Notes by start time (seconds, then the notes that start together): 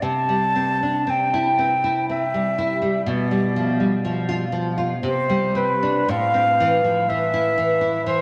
0.02 C3 A5
0.29 G3
0.56 C4
0.83 D4
1.07 C4 G5
1.34 E4
1.59 C4
1.84 E4
2.09 C4 E5
2.34 G3
2.58 E4
2.82 G3
3.06 B2 D5
3.31 G3
3.56 F3
3.80 G3
4.05 F3
4.29 F4
4.52 F3
4.78 F4
5.03 C3 C5
5.30 G3
5.55 C4 B4
5.83 D4
6.08 A2 F5
6.34 C4
6.60 E3
6.84 F3
7.09 E3 E5
7.34 E4
7.58 E3
7.81 E4
8.06 E3 C5